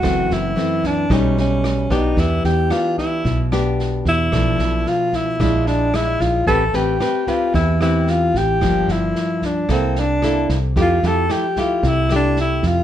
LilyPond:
<<
  \new Staff \with { instrumentName = "Alto saxophone" } { \time 4/4 \key e \phrygian \tempo 4 = 112 fis'8 e'4 d'8 des'8 des'4 dis'8 | e'8 g'8 f'8 e'4 r4 e'8~ | e'4 f'8 e'4 d'8 e'8 f'8 | a'8 g'4 f'8 e'8 e'8 f'8 g'8~ |
g'8 e'4 d'8 c'8 d'4 r8 | f'8 a'8 g'8 f'8 e'8 d'8 e'8 f'8 | }
  \new Staff \with { instrumentName = "Nylon-string guitar" } { \time 4/4 \key e \phrygian << { <e a c'>4 <e a c'>4 <g a dis'>4. <b d' g'>8~ | <b d' g'>4 <b d' g'>4 r8 <b d' g'>4. | <f a d'>2 <aes d' e'>4 <aes d' e'>4 | <c' g' b'>8 <c' g' b'>8 <c' g' b'>8 <c' g' b'>4 <c' g' b'>4. |
<f bes d'>2 <bes e' a'>8 r8 <bes e' a'>8 r8 | <a e' g'>8 <a e' g'>8 <a e' g'>8 <a e' g'>4 <a e' g'>4. | } \\ { fis,2 b,2 | e2 b,2 | b,2 bes,2 | a2 e2 |
g,2 c2 | f2 c2 | } >> }
  \new Staff \with { instrumentName = "Fingered electric bass" } { \clef bass \time 4/4 \key e \phrygian fis,,8 fis,,8 r4 b,,4. b,,8 | e,8 e,8 r4 b,,4. e,8 | b,,8 b,,8 r4 bes,,4. bes,,8 | a,,8 a,,8 r4 e,4. a,,8 |
g,,8 g,,8 r4 c,4. c,8 | f,8 f,8 r4 c,4. f,8 | }
  \new DrumStaff \with { instrumentName = "Drums" } \drummode { \time 4/4 <bd ss sn>8 sn8 sn8 <bd sn>8 <bd ss sn>8 sn8 <ss sn>8 <bd sn>8 | <bd sn>8 sn8 <ss sn>8 <bd sn>8 <bd sn>8 <ss sn>8 sn8 <bd sn>8 | <bd ss sn>8 sn8 sn8 <bd sn>8 <bd ss sn>8 sn8 <ss sn>8 <bd sn>8 | <bd sn>8 sn8 <ss sn>8 <bd sn>8 <bd sn>8 <ss sn>8 sn8 <bd sn>8 |
<bd ss sn>8 sn8 sn8 <bd sn>8 <bd ss sn>8 sn8 <ss sn>8 <bd sn>8 | <bd sn>8 sn8 <ss sn>8 <bd sn>8 <bd sn>8 <ss sn>8 sn8 <bd sn>8 | }
>>